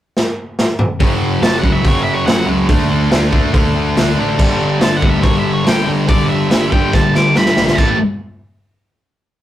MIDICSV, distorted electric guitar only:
0, 0, Header, 1, 2, 480
1, 0, Start_track
1, 0, Tempo, 423430
1, 1129, Time_signature, 4, 2, 24, 8
1, 10681, End_track
2, 0, Start_track
2, 0, Title_t, "Distorted electric guitar"
2, 0, Program_c, 0, 30
2, 1131, Note_on_c, 0, 42, 92
2, 1138, Note_on_c, 0, 49, 85
2, 1151, Note_on_c, 0, 54, 88
2, 1594, Note_off_c, 0, 42, 0
2, 1608, Note_off_c, 0, 49, 0
2, 1608, Note_on_c, 0, 42, 69
2, 1622, Note_on_c, 0, 49, 75
2, 1631, Note_off_c, 0, 54, 0
2, 1636, Note_on_c, 0, 54, 80
2, 1836, Note_off_c, 0, 42, 0
2, 1849, Note_on_c, 0, 42, 84
2, 1850, Note_off_c, 0, 49, 0
2, 1864, Note_on_c, 0, 49, 80
2, 1873, Note_off_c, 0, 54, 0
2, 1878, Note_on_c, 0, 54, 105
2, 2069, Note_off_c, 0, 42, 0
2, 2075, Note_off_c, 0, 49, 0
2, 2083, Note_on_c, 0, 42, 81
2, 2089, Note_on_c, 0, 49, 98
2, 2094, Note_off_c, 0, 54, 0
2, 2108, Note_on_c, 0, 54, 101
2, 2549, Note_off_c, 0, 42, 0
2, 2562, Note_off_c, 0, 49, 0
2, 2562, Note_on_c, 0, 42, 83
2, 2569, Note_off_c, 0, 54, 0
2, 2575, Note_on_c, 0, 49, 81
2, 2582, Note_on_c, 0, 54, 91
2, 2786, Note_off_c, 0, 42, 0
2, 2800, Note_on_c, 0, 42, 92
2, 2803, Note_off_c, 0, 49, 0
2, 2811, Note_off_c, 0, 54, 0
2, 2817, Note_on_c, 0, 49, 88
2, 2824, Note_on_c, 0, 54, 98
2, 3027, Note_off_c, 0, 42, 0
2, 3031, Note_off_c, 0, 49, 0
2, 3036, Note_on_c, 0, 50, 82
2, 3039, Note_off_c, 0, 54, 0
2, 3050, Note_on_c, 0, 57, 88
2, 3062, Note_on_c, 0, 62, 98
2, 3507, Note_off_c, 0, 50, 0
2, 3518, Note_off_c, 0, 57, 0
2, 3520, Note_on_c, 0, 50, 79
2, 3531, Note_on_c, 0, 57, 89
2, 3541, Note_off_c, 0, 62, 0
2, 3545, Note_on_c, 0, 62, 81
2, 3750, Note_off_c, 0, 50, 0
2, 3762, Note_off_c, 0, 57, 0
2, 3764, Note_on_c, 0, 50, 81
2, 3776, Note_off_c, 0, 62, 0
2, 3776, Note_on_c, 0, 57, 90
2, 3781, Note_on_c, 0, 62, 89
2, 3986, Note_off_c, 0, 50, 0
2, 3999, Note_on_c, 0, 50, 100
2, 4003, Note_off_c, 0, 57, 0
2, 4016, Note_on_c, 0, 57, 84
2, 4026, Note_off_c, 0, 62, 0
2, 4031, Note_on_c, 0, 62, 93
2, 4488, Note_off_c, 0, 50, 0
2, 4497, Note_off_c, 0, 57, 0
2, 4502, Note_on_c, 0, 50, 76
2, 4511, Note_on_c, 0, 57, 78
2, 4519, Note_off_c, 0, 62, 0
2, 4524, Note_on_c, 0, 62, 84
2, 4716, Note_off_c, 0, 50, 0
2, 4726, Note_off_c, 0, 57, 0
2, 4730, Note_on_c, 0, 50, 81
2, 4740, Note_on_c, 0, 57, 85
2, 4747, Note_off_c, 0, 62, 0
2, 4752, Note_on_c, 0, 62, 97
2, 4954, Note_off_c, 0, 50, 0
2, 4959, Note_off_c, 0, 57, 0
2, 4959, Note_on_c, 0, 43, 82
2, 4968, Note_on_c, 0, 50, 88
2, 4978, Note_on_c, 0, 55, 95
2, 5438, Note_off_c, 0, 43, 0
2, 5442, Note_on_c, 0, 43, 78
2, 5444, Note_off_c, 0, 50, 0
2, 5458, Note_on_c, 0, 50, 91
2, 5464, Note_off_c, 0, 55, 0
2, 5469, Note_on_c, 0, 55, 94
2, 5683, Note_off_c, 0, 50, 0
2, 5687, Note_off_c, 0, 43, 0
2, 5691, Note_on_c, 0, 43, 89
2, 5697, Note_on_c, 0, 50, 100
2, 5709, Note_off_c, 0, 55, 0
2, 5714, Note_on_c, 0, 55, 87
2, 5903, Note_off_c, 0, 43, 0
2, 5916, Note_off_c, 0, 50, 0
2, 5917, Note_on_c, 0, 43, 95
2, 5926, Note_off_c, 0, 55, 0
2, 5930, Note_on_c, 0, 50, 103
2, 5939, Note_on_c, 0, 55, 97
2, 6385, Note_off_c, 0, 43, 0
2, 6391, Note_off_c, 0, 50, 0
2, 6398, Note_on_c, 0, 43, 78
2, 6401, Note_off_c, 0, 55, 0
2, 6404, Note_on_c, 0, 50, 84
2, 6414, Note_on_c, 0, 55, 84
2, 6628, Note_off_c, 0, 43, 0
2, 6640, Note_off_c, 0, 50, 0
2, 6642, Note_on_c, 0, 43, 81
2, 6650, Note_off_c, 0, 55, 0
2, 6653, Note_on_c, 0, 50, 105
2, 6664, Note_on_c, 0, 55, 107
2, 6859, Note_off_c, 0, 43, 0
2, 6873, Note_off_c, 0, 50, 0
2, 6873, Note_on_c, 0, 43, 94
2, 6887, Note_on_c, 0, 50, 88
2, 6888, Note_off_c, 0, 55, 0
2, 6901, Note_on_c, 0, 55, 102
2, 7358, Note_off_c, 0, 43, 0
2, 7370, Note_off_c, 0, 50, 0
2, 7372, Note_on_c, 0, 43, 83
2, 7378, Note_off_c, 0, 55, 0
2, 7384, Note_on_c, 0, 50, 80
2, 7391, Note_on_c, 0, 55, 101
2, 7595, Note_off_c, 0, 43, 0
2, 7603, Note_off_c, 0, 50, 0
2, 7609, Note_on_c, 0, 43, 83
2, 7617, Note_on_c, 0, 50, 89
2, 7619, Note_off_c, 0, 55, 0
2, 7633, Note_on_c, 0, 55, 96
2, 7830, Note_off_c, 0, 43, 0
2, 7844, Note_on_c, 0, 43, 88
2, 7845, Note_off_c, 0, 50, 0
2, 7853, Note_off_c, 0, 55, 0
2, 7858, Note_on_c, 0, 50, 108
2, 7867, Note_on_c, 0, 55, 101
2, 8318, Note_off_c, 0, 43, 0
2, 8326, Note_off_c, 0, 50, 0
2, 8332, Note_on_c, 0, 43, 89
2, 8336, Note_off_c, 0, 55, 0
2, 8339, Note_on_c, 0, 50, 87
2, 8350, Note_on_c, 0, 55, 81
2, 8570, Note_off_c, 0, 43, 0
2, 8578, Note_off_c, 0, 50, 0
2, 8584, Note_off_c, 0, 55, 0
2, 8584, Note_on_c, 0, 43, 80
2, 8592, Note_on_c, 0, 50, 91
2, 8598, Note_on_c, 0, 55, 92
2, 8719, Note_off_c, 0, 62, 0
2, 8805, Note_off_c, 0, 43, 0
2, 8805, Note_off_c, 0, 50, 0
2, 8810, Note_on_c, 0, 45, 96
2, 8812, Note_off_c, 0, 55, 0
2, 8819, Note_on_c, 0, 52, 86
2, 8830, Note_on_c, 0, 57, 92
2, 9005, Note_off_c, 0, 45, 0
2, 9010, Note_off_c, 0, 52, 0
2, 9015, Note_off_c, 0, 57, 0
2, 10681, End_track
0, 0, End_of_file